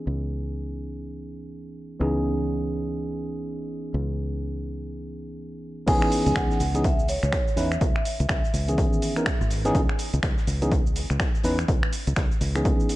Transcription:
Already playing: E3 B3 C#4 D#4 G#4
0.07 C#2
2.00 C#2 E3 B3 C#4 D#4 G#4
3.94 C#2
5.87 C#2 E3 B3 C#4 D#4 G#4 G#5, kick, closed hi-hat, crash, shaker
6.02 finger snap
6.12 closed hi-hat, open hi-hat, shaker
6.26 C#2, closed hi-hat, shaker
6.36 F#5, finger snap, kick, snare, closed hi-hat, shaker
6.51 snare, shaker
6.60 C#2, closed hi-hat, open hi-hat, shaker
6.74 E3 B3 C#4 D#4 G#4, closed hi-hat, shaker
6.84 E5, kick, closed hi-hat, shaker
6.99 shaker
7.08 C#5, closed hi-hat, open hi-hat, shaker
7.23 C#2, finger snap, closed hi-hat, shaker
7.33 finger snap, kick, snare, closed hi-hat, shaker
7.48 closed hi-hat, shaker
7.57 E2 E3 B3 C#4 D#4 B4 E5, snare, closed hi-hat, open hi-hat, shaker
7.72 finger snap, closed hi-hat, shaker
7.81 C#2, kick, closed hi-hat, shaker
7.96 finger snap
8.05 closed hi-hat, open hi-hat, shaker
8.20 C#2, closed hi-hat, shaker
8.29 C#2, finger snap, kick, snare, closed hi-hat, shaker
8.45 closed hi-hat, shaker
8.54 C#2, closed hi-hat, open hi-hat, shaker
8.68 D#3 E3 B3 C#4 G#4, closed hi-hat, shaker
8.78 kick, closed hi-hat, shaker
8.93 shaker
9.02 closed hi-hat, open hi-hat, shaker
9.16 E3 B3 C#4 D#4 A#4, finger snap, closed hi-hat, shaker
9.26 finger snap, kick, snare, closed hi-hat, shaker
9.41 G#1, closed hi-hat, shaker
9.50 snare, closed hi-hat, open hi-hat, shaker
9.65 E3 B3 C#4 D#4 G#4, snare, closed hi-hat, shaker
9.75 C#2, kick, closed hi-hat, shaker
9.89 finger snap
9.99 closed hi-hat, open hi-hat, shaker
10.14 C#2, closed hi-hat, shaker
10.23 C#2, finger snap, kick, snare, closed hi-hat, shaker
10.37 snare, shaker
10.47 C#2, closed hi-hat, open hi-hat, shaker
10.61 E3 B3 C#4 D#4 G#4, closed hi-hat, shaker
10.72 kick, closed hi-hat, shaker
10.87 shaker
10.96 closed hi-hat, open hi-hat, shaker
11.10 C#2, finger snap, closed hi-hat, shaker
11.20 finger snap, kick, snare, closed hi-hat, shaker
11.35 closed hi-hat, shaker
11.43 E2 E3 B3 C#4 D#4 B4, snare, closed hi-hat, open hi-hat, shaker
11.59 finger snap, closed hi-hat, shaker
11.68 C#2, kick, closed hi-hat, shaker
11.83 finger snap
11.93 closed hi-hat, open hi-hat, shaker
12.07 C#2, closed hi-hat, shaker
12.16 C#2, finger snap, kick, snare, closed hi-hat, shaker
12.31 closed hi-hat, shaker
12.41 C#2, closed hi-hat, open hi-hat, shaker
12.55 E3 B3 C#4 D#4 G#4, finger snap, closed hi-hat, shaker
12.65 kick, closed hi-hat, shaker
12.80 shaker
12.89 closed hi-hat, open hi-hat, shaker

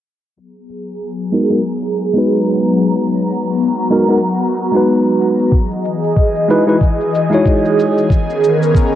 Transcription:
0.36 F#3 B3 G#4 A#5, shaker
0.56 shaker
0.70 shaker
0.88 shaker
1.02 shaker
1.32 G#3 B3 D#4 F#4 A#4, shaker
1.50 G#3 B3 D#4 F#4 A#4
1.67 shaker
1.98 shaker
2.14 G#3 B3 D#4 F#4, shaker
2.18 B4
2.31 shaker
2.63 shaker
2.81 shaker
2.95 F#4, shaker
3.14 shaker
3.28 shaker
3.46 shaker
3.60 shaker
3.78 shaker
3.90 G#3 B3 D#4 F#4 A#4, shaker
4.08 G#3 B3 D#4 F#4 A#4, shaker
4.24 shaker
4.43 shaker
4.57 shaker
4.72 G#3 B3 D#4 F#4, shaker
4.76 B4
4.89 shaker
5.07 shaker
5.21 shaker
5.39 shaker
5.52 E3 G#4 D#5, kick, shaker
5.71 shaker
5.85 shaker
6.04 shaker
6.17 kick, shaker
6.36 shaker
6.48 G#3 D#4 E4 F#4 B4, shaker
6.67 G#3 D#4 E4 F#4 B4, shaker
6.81 kick, shaker
7.01 shaker
7.15 shaker
7.30 G#3 D#4 E4 F#4, shaker
7.34 C#5
7.46 kick, shaker
7.65 shaker
7.79 shaker
7.98 shaker
8.10 D#3 B3 C#4 A#4, kick, shaker
8.30 shaker
8.44 shaker
8.63 shaker
8.75 kick, shaker

